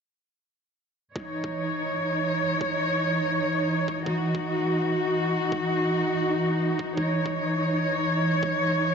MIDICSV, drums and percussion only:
0, 0, Header, 1, 2, 480
1, 0, Start_track
1, 0, Key_signature, 4, "minor"
1, 0, Tempo, 363636
1, 1527, Time_signature, 4, 2, 24, 8
1, 11809, End_track
2, 0, Start_track
2, 0, Title_t, "Drums"
2, 1527, Note_on_c, 9, 36, 102
2, 1659, Note_off_c, 9, 36, 0
2, 1899, Note_on_c, 9, 36, 54
2, 2031, Note_off_c, 9, 36, 0
2, 3444, Note_on_c, 9, 36, 106
2, 3576, Note_off_c, 9, 36, 0
2, 5124, Note_on_c, 9, 36, 57
2, 5256, Note_off_c, 9, 36, 0
2, 5364, Note_on_c, 9, 36, 108
2, 5496, Note_off_c, 9, 36, 0
2, 5739, Note_on_c, 9, 36, 57
2, 5871, Note_off_c, 9, 36, 0
2, 7288, Note_on_c, 9, 36, 106
2, 7420, Note_off_c, 9, 36, 0
2, 8967, Note_on_c, 9, 36, 56
2, 9099, Note_off_c, 9, 36, 0
2, 9206, Note_on_c, 9, 36, 106
2, 9338, Note_off_c, 9, 36, 0
2, 9579, Note_on_c, 9, 36, 56
2, 9711, Note_off_c, 9, 36, 0
2, 11125, Note_on_c, 9, 36, 99
2, 11257, Note_off_c, 9, 36, 0
2, 11809, End_track
0, 0, End_of_file